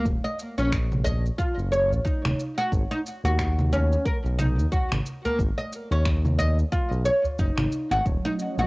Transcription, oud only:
0.24 0.38 D#5 medium
0.58 0.71 C#4 medium
1.04 1.23 D#5 medium
1.38 1.57 F4 medium
1.72 1.91 C#5 medium
2.05 2.56 D#4 medium
2.58 2.71 F#4 loud
2.91 2.99 D#4 loud
3.25 3.71 F#4 medium
3.73 4.04 C#4 medium
4.05 4.17 A#4 medium
4.39 4.71 D#4 medium
4.72 4.91 F#4 medium
5.25 5.38 A#3 medium
5.58 5.71 D#5 medium
5.92 6.05 C#4 medium
6.39 6.57 D#5 loud
6.72 6.91 F4 medium
7.05 7.24 C#5 medium
7.39 7.90 D#4 medium
7.92 8.05 F#4 loud
8.25 8.33 D#4 loud
8.59 8.67 F#4 medium

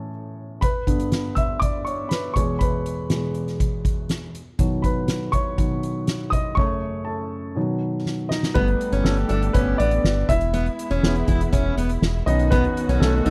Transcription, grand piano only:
0.00 0.65 A2 soft
0.00 0.64 E3 soft
0.00 0.64 C#4 soft
0.00 0.65 A4 soft
0.00 0.65 C#5 medium
0.00 0.64 A5 soft
0.00 0.65 C#6 medium
0.61 1.09 B4 medium
0.61 1.08 B5 medium
0.87 1.20 G2 soft
0.87 1.20 D3 soft
0.87 1.21 B3 soft
1.35 1.60 E5 medium
1.35 1.62 E6 medium
1.60 1.85 D5 medium
1.60 1.86 D6 medium
1.85 2.10 C#5 soft
1.85 2.11 C#6 medium
2.09 2.35 B4 medium
2.09 2.36 B5 medium
2.34 3.06 E2 soft
2.34 3.07 B2 soft
2.34 3.07 G#3 soft
2.34 2.59 C#5 soft
2.34 2.58 C#6 medium
2.59 4.06 B4 soft
2.59 4.05 B5 medium
3.10 3.33 E2 soft
3.10 3.33 B2 soft
3.10 3.33 G#3 soft
4.59 5.30 B2 soft
4.59 5.30 D#3 soft
4.59 5.30 F#3 soft
4.82 5.31 B4 medium
4.82 5.34 B5 medium
5.32 6.29 C#5 medium
5.32 6.35 C#6 medium
5.58 5.80 B2 soft
5.58 5.80 D#3 soft
5.58 5.81 F#3 soft
6.30 6.56 D#5 medium
6.30 6.57 D#6 medium
6.55 7.28 F#2 soft
6.55 7.28 C#3 soft
6.55 7.28 A3 medium
6.55 7.04 C#5 medium
6.55 7.07 C#6 medium
7.05 7.53 A4 soft
7.05 7.52 A5 medium
7.55 7.89 B2 soft
7.55 7.89 D#3 soft
7.55 7.89 F#3 medium
8.29 8.54 D#4 medium
8.29 8.56 D#5 medium
8.54 10.25 G3 medium
8.54 9.05 A3 soft
8.54 9.02 B3 medium
8.54 9.06 B4 medium
9.04 9.29 A3 soft
9.04 9.27 A4 medium
9.29 9.54 A3 medium
9.29 9.55 A4 medium
9.53 9.78 B3 medium
9.53 9.80 B4 medium
9.78 10.26 D4 medium
9.78 10.25 D5 medium
10.29 10.76 E4 medium
10.29 10.75 E5 loud
11.03 12.23 E3 soft
11.03 12.23 G#3 soft
11.03 12.24 B3 medium
12.26 12.60 D#3 medium
12.26 12.51 B3 medium
12.26 12.60 C#4 medium
12.26 12.50 D#4 medium
12.26 12.50 D#5 medium
12.51 12.98 B3 medium
12.51 13.02 B4 medium
13.00 13.25 A3 medium
13.00 13.23 A4 medium
13.25 13.30 A3 medium
13.25 13.30 A4 medium

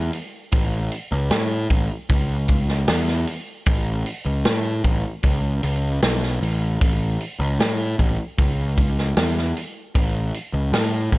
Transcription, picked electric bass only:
0.53 0.88 A1 medium
1.12 1.29 C#2 loud
1.31 1.66 A2 medium
1.70 1.88 A1 medium
2.10 2.84 C#2 medium
2.89 3.24 E2 medium
3.67 4.02 A1 medium
4.25 4.43 C#2 medium
4.46 4.81 A2 loud
4.84 5.02 A1 medium
5.24 5.59 C#2 medium
5.63 5.99 C#2 medium
6.02 6.38 B1 medium
6.41 6.77 A1 medium
6.81 7.17 A1 medium
7.39 7.57 C#2 medium
7.59 7.94 A2 medium
7.99 8.16 A1 medium
8.38 9.12 C#2 medium
9.17 9.52 E2 medium
9.95 10.30 A1 medium
10.53 10.71 C#2 medium
10.72 11.08 A2 medium
11.12 11.18 A1 medium

